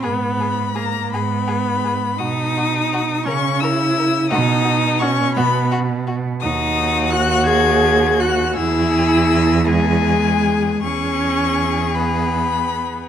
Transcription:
<<
  \new Staff \with { instrumentName = "Violin" } { \time 6/8 \key b \major \tempo 4. = 56 b''4 ais''8 b''4. | dis'''4. cis'''8 e'''4 | dis'''4 cis'''8 b''8 r4 | \key e \lydian dis'''4 fis'''8 gis'''4 fis'''8 |
e'''4. gis''4. | cis'''4. b''4. | }
  \new Staff \with { instrumentName = "Violin" } { \time 6/8 \key b \major gis'8 gis'8 gis'8 gis'8 gis'8 gis'8 | fis'8 fis'8 fis'8 ais'8 ais'8 ais'8 | fis'8 fis'8 fis'8 fis'8 fis'8 fis'8 | \key e \lydian fis'2. |
gis'4. gis'4. | gis'2. | }
  \new Staff \with { instrumentName = "Viola" } { \time 6/8 \key b \major b4 ais8 b4. | dis'4. cis'8 e'4 | dis'4 cis'8 b8 r4 | \key e \lydian dis'4 fis'8 gis'4 fis'8 |
e'4. gis4. | cis'4. b4. | }
  \new Staff \with { instrumentName = "Cello" } { \clef bass \time 6/8 \key b \major gis,4. gis,4. | b,4. cis4. | b,4. b,4. | \key e \lydian dis,2. |
e,2. | e,2. | }
>>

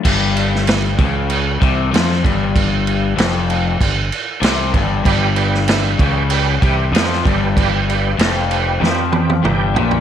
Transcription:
<<
  \new Staff \with { instrumentName = "Tonewheel organ" } { \time 4/4 \key g \mixolydian \tempo 4 = 96 r1 | r1 | <g' b' d''>8 <g' b' d''>8 <g' b' e''>8 <g' b' d''>8 <g' b' d''>8 <g' b' d''>8 <g' b' d''>8 <g' b' d''>8 | <g' b' d''>8 <g' b' d''>8 <g' b' f''>8 <g' b' d''>8 <g' b' d''>8 <g' b' d''>8 <g' b' d'' g''>8 <g' b' d'' b''>8 | }
  \new Staff \with { instrumentName = "Overdriven electric guitar" } { \clef bass \time 4/4 \key g \mixolydian g,4. cis4 c8 f8 g,8~ | g,4 f,4 g,8 r8 c8 g,8 | g,4. cis4 c8 f8 g,8~ | g,4 f,4 f4 g,8 bes,8 | }
  \new Staff \with { instrumentName = "Fingered electric bass" } { \clef bass \time 4/4 \key g \mixolydian g,,4. cis,4 c,8 f,8 g,,8~ | g,,4 f,,4 g,,8 r8 c,8 g,,8 | g,,4. cis,4 c,8 f,8 g,,8~ | g,,4 f,,4 f,4 g,,8 bes,,8 | }
  \new DrumStaff \with { instrumentName = "Drums" } \drummode { \time 4/4 <cymc bd>8 cymc16 sn16 <cymc sn>8 <cymc bd>8 cymc8 <cymc bd>8 <cymc sn>16 sn16 <cymc bd>8 | <cymc bd>8 cymc8 <cymc sn>8 cymc8 <cymc bd>8 cymc8 <cymc sn>8 <cymc bd>8 | <cymc bd>8 cymc16 sn16 <cymc sn>8 <cymc bd>8 cymc8 <cymc bd>8 <cymc sn>16 sn16 <cymc bd>8 | <cymc bd>8 cymc8 <cymc sn>8 cymc8 sn8 tommh16 tommh16 toml8 tomfh16 tomfh16 | }
>>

